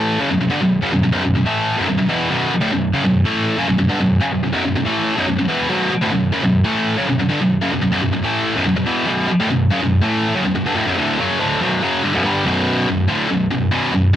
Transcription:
Already playing: A2 E3 A3
0.20 F#2 C#3
0.30 B1 F#2
0.40 B1 F#2
0.50 G2 D3
0.61 B1 F#2
0.82 F#2 C#3
0.93 B1 F#2
1.03 B1 F#2
1.13 B1 F#2
1.24 B1 F#2
1.35 B1 F#2
1.46 A2 E3 A3
1.77 B1 F#2
1.88 B1 F#2
1.98 B1 F#2
2.09 E2 B2 E3
2.30 B1 F#2 B2
2.51 muted distorted electric guitar stroke
2.61 D2 A2
2.72 B1 F#2
2.94 F#2 C#3
3.04 B1 F#2
3.25 A2 E3 A3
3.58 F#2 C#3
3.68 B1 F#2
3.78 B1 F#2
3.89 G2 D3
4.01 B1 F#2
4.21 F#2 C#3
4.32 B1 F#2
4.43 B1 F#2
4.53 B1 F#2
4.64 B1 F#2
4.76 B1 F#2
4.86 A2 E3 A3
5.17 B1 F#2
5.27 B1 F#2
5.38 B1 F#2
5.48 E2 B2 E3
5.69 B1 F#2 B2
5.90 muted distorted electric guitar stroke
6.01 D2 A2
6.12 B1 F#2
6.32 F#2 C#3
6.43 B1 F#2
6.64 A2 E3 A3
6.97 F#2 C#3
7.08 B1 F#2
7.19 B1 F#2
7.29 G2 D3
7.40 B1 F#2
7.61 F#2 C#3
7.72 B1 F#2
7.81 B1 F#2
7.92 B1 F#2
8.02 B1 F#2
8.13 B1 F#2
8.23 A2 E3 A3
8.55 B1 F#2
8.66 B1 F#2
8.76 B1 F#2
8.86 E2 B2 E3
9.07 B1 F#2 B2
9.29 muted distorted electric guitar stroke
9.40 D2 A2
9.50 B1 F#2
9.71 F#2 C#3
9.82 B1 F#2
10.02 A2 E3 A3
10.34 F#2 C#3
10.45 B1 F#2
10.55 B1 F#2
10.66 G2 D3
10.75 D2 A2
10.87 B1 F#2
10.97 D2 A2 D3
11.19 F#2 C#3 F#3
11.40 D2 A2 D3
11.61 B1 F#2 B2
11.83 F#2 C#3 F#3
12.03 G2 D3
12.14 B1 F#2
12.25 G2 D3 G3
12.45 B1 F#2 B2
12.88 B1 F#2
13.08 D2 A2 D3
13.30 B1 F#2
13.51 B1 F#2
13.71 B1 F#2 B2
13.92 B1 F#2

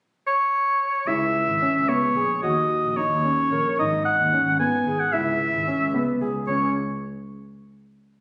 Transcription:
0.27 C#5
1.06 C#2 E4 E5
1.47 G#1
1.62 C#4
1.74 C#2
1.88 B3 C#5
2.16 A#1 G#4
2.42 D#2 F#4 D#5
2.83 A#1
2.90 D#5
2.97 D#4 C#5
3.10 D#2
3.24 C#4
3.52 A#1 A#4
3.79 G#1 D#4 D#5
4.05 F#5
4.18 D#2
4.33 C#4
4.46 G#1
4.60 B3 G#5
4.85 G#1 G#4
5.00 F#5
5.12 C#2 E4 E5
5.54 G#1
5.67 C#4
5.80 C#2
5.94 B3
6.21 C#2 G#4
6.47 C#2 C#4 C#5

